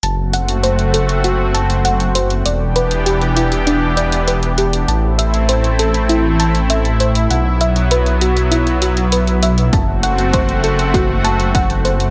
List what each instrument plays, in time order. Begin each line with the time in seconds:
0.03 detuned saw bass F#1, analog synth pad A3 C4 F#4, synth arpeggio sound A5, closed hi-hat
0.33 synth arpeggio sound F#5, closed hi-hat
0.48 closed hi-hat
0.63 synth arpeggio sound C5, closed hi-hat
0.79 closed hi-hat
0.94 synth arpeggio sound A4, closed hi-hat
1.09 closed hi-hat
1.24 synth arpeggio sound F#4, closed hi-hat
1.54 synth arpeggio sound A5, closed hi-hat
1.70 closed hi-hat
1.85 synth arpeggio sound F#5, closed hi-hat
2.00 closed hi-hat
2.15 synth arpeggio sound C5, closed hi-hat
2.30 closed hi-hat
2.45 detuned saw bass E1, analog synth pad E3 B3 D4 G4, synth arpeggio sound D5, closed hi-hat
2.76 synth arpeggio sound B4, closed hi-hat
2.91 closed hi-hat
3.06 synth arpeggio sound G4, closed hi-hat
3.22 closed hi-hat
3.37 synth arpeggio sound E4, closed hi-hat
3.52 closed hi-hat
3.67 synth arpeggio sound D4, closed hi-hat
3.97 synth arpeggio sound D5, closed hi-hat
4.12 closed hi-hat
4.28 synth arpeggio sound B4, closed hi-hat
4.43 closed hi-hat
4.58 synth arpeggio sound G4, closed hi-hat
4.73 closed hi-hat
4.88 detuned saw bass A1, analog synth pad A3 C4 E4, synth arpeggio sound A5, closed hi-hat
5.18 synth arpeggio sound E5, closed hi-hat
5.34 closed hi-hat
5.49 synth arpeggio sound C5, closed hi-hat
5.64 closed hi-hat
5.79 synth arpeggio sound A4, closed hi-hat
5.94 closed hi-hat
6.09 synth arpeggio sound E4, closed hi-hat
6.40 synth arpeggio sound A5, closed hi-hat
6.55 closed hi-hat
6.70 synth arpeggio sound E5, closed hi-hat
6.85 closed hi-hat
7.00 synth arpeggio sound C5, closed hi-hat
7.15 closed hi-hat
7.30 detuned saw bass B1, analog synth pad F#3 B3, synth arpeggio sound F#5, closed hi-hat
7.61 synth arpeggio sound E5, closed hi-hat
7.76 closed hi-hat
7.91 synth arpeggio sound B4, closed hi-hat
8.06 closed hi-hat
8.21 synth arpeggio sound F#4, closed hi-hat
8.37 closed hi-hat
8.52 synth arpeggio sound E4, closed hi-hat
8.67 closed hi-hat
8.82 synth arpeggio sound F#4, closed hi-hat
8.97 closed hi-hat
9.12 synth arpeggio sound B4, closed hi-hat
9.27 closed hi-hat
9.43 synth arpeggio sound E5, closed hi-hat
9.58 closed hi-hat
9.73 detuned saw bass F#1, analog synth pad A3 C4 F#4, synth arpeggio sound A5, kick, closed hi-hat
10.03 synth arpeggio sound F#5, closed hi-hat
10.18 closed hi-hat
10.33 synth arpeggio sound C5, kick, closed hi-hat
10.49 closed hi-hat
10.64 synth arpeggio sound A4, closed hi-hat
10.79 closed hi-hat
10.94 synth arpeggio sound F#4, kick, closed hi-hat
11.24 synth arpeggio sound A5, closed hi-hat
11.40 closed hi-hat
11.55 synth arpeggio sound F#5, kick, closed hi-hat
11.70 closed hi-hat
11.85 synth arpeggio sound C5, closed hi-hat
12.00 closed hi-hat